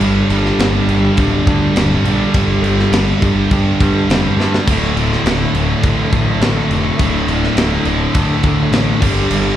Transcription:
Already playing: G2 D3 G3 D4 A4
0.01 G1 G2 D3 G3, crash
0.30 G1 G2 D3 G3, crash
0.45 snare
0.59 G1 G2 D3 G3, snare, crash
0.88 G1 G2 D3 G3, crash
1.17 D1 G2 D3 G3, kick, crash
1.47 D2 G2 D3 G3, kick, crash
1.75 D1 G2 D3 G3, snare, crash
2.04 A#1 G2, crash
2.08 D3 G3
2.34 G1 G2 D3 G3, kick, crash
2.62 G1 G2 D3 G3, crash
2.79 snare
2.91 G1 G2 D3, snare, crash
2.96 G3
3.22 G1 G2 D3 G3, kick, crash
3.51 G2 D3 G3, kick, crash
3.80 G2 D3 G3, kick, crash
4.08 F1 G2 D3 G3, snare, crash
4.37 G2 D3 G3, snare
4.54 snare
4.67 D1 D2 A2 D3 E5, kick, splash, crash
4.95 D1 D2 A2 D3, crash
5.12 snare
5.24 D1 D2 A2 D3, snare, crash
5.53 D1 D2 A2 D3, crash
5.83 A1 D2 A2 D3, kick, crash
6.12 A1 D2 A2 D3, kick, crash
6.41 A1 D2 A2 D3, snare, crash
6.69 F1 D2 A2 D3, crash
6.99 D1 D2 A2 D3, kick, crash
7.27 D1 D2 A2 D3, crash
7.44 snare
7.56 D1 D2 A2 D3, snare, crash
7.85 D1 D2 A2 D3, crash
8.14 D2 A2 D3, kick, crash
8.43 D2 A2 D3, kick, crash
8.72 A1 D2 A2 D3, snare, crash
9.01 G1 G2 D3 G3, kick, crash
9.30 G1 G2 D3 G3, crash

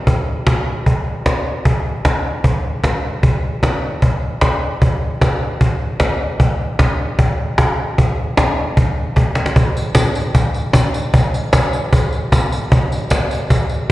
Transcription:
0.07 cajon bass
0.47 cajon bass, cajon slap
0.86 cajon bass
1.26 cajon bass, cajon slap
1.65 cajon bass
2.05 cajon bass, cajon slap
2.44 cajon bass
2.84 cajon bass, cajon slap
3.23 cajon bass
3.63 cajon bass, cajon slap
4.02 cajon bass
4.41 cajon bass, cajon slap
4.82 cajon bass
5.21 cajon bass, cajon slap
5.61 cajon bass
6.00 cajon bass, cajon slap
6.40 cajon bass
6.79 cajon bass, cajon slap
7.19 cajon bass
7.58 cajon bass, cajon slap
7.98 cajon bass
8.37 cajon bass, cajon slap
8.77 cajon bass
9.16 cajon bass, cajon slap
9.35 cajon slap
9.46 cajon slap
9.56 cajon bass, tambourine
9.77 tambourine
9.95 cajon bass, cajon slap, tambourine
10.15 tambourine
10.35 cajon bass, tambourine
10.54 tambourine
10.73 cajon bass, cajon slap, tambourine
10.94 tambourine
11.14 cajon bass, tambourine
11.34 tambourine
11.53 cajon bass, cajon slap, tambourine
11.73 tambourine
11.93 cajon bass, tambourine
12.12 tambourine
12.32 cajon bass, cajon slap, tambourine
12.52 tambourine
12.72 cajon bass, tambourine
12.92 tambourine
13.10 cajon bass, cajon slap, tambourine
13.31 tambourine
13.50 cajon bass, tambourine
13.70 tambourine

